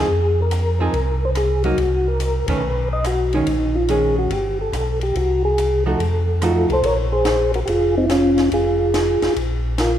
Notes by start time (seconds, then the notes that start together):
0.00 G#4
0.08 F2
0.42 A#4
0.51 hi-hat pedal, ride
0.80 F3 C4 D#4 G#4 A#4
0.93 C2, ride
1.25 C5
1.35 G#4, cross-stick, hi-hat pedal, ride
1.64 F#3 A#3 D#4 F#4, ride
1.77 C2, ride
2.08 A#4
2.20 hi-hat pedal, ride
2.48 C2 D#3 A3 C#4 B4, kick, ride
2.62 B1
2.93 D#5
3.04 F#4, cross-stick, hi-hat pedal, ride
3.33 D#3 G#3 C#4 D#4, ride
3.47 A#1, ride
3.75 F4
3.88 D#3 G#3 C#4 G#4, hi-hat pedal, ride
4.19 F#4
4.30 G1 G4, ride
4.61 A4
4.72 B1, cross-stick, hi-hat pedal, ride
5.01 G4, ride
5.15 C2 F#4, ride
5.45 G#4
5.58 hi-hat pedal, ride
5.86 F3 A3 D#4 F#4 A4
5.99 F2, ride
6.42 F3 A3 D#4 F4 F#4 A4, cross-stick, hi-hat pedal, ride
6.69 C2 A4, ride
6.73 C5
6.82 A#1 A#4 C#5, ride
7.12 G#4 C5
7.25 snare, hi-hat pedal, ride
7.54 F#4 A#4, ride
7.66 F1 F4 G4 G#4, ride
7.98 C4 D#4
8.04 E4
8.10 C#4 F4, snare, hi-hat pedal, ride
8.38 snare, ride
8.52 F1 F4 G#4, ride
8.94 snare, hi-hat pedal, ride
9.22 F1, snare, ride
9.36 A#1, ride
9.78 F4 A#4, snare, hi-hat pedal, ride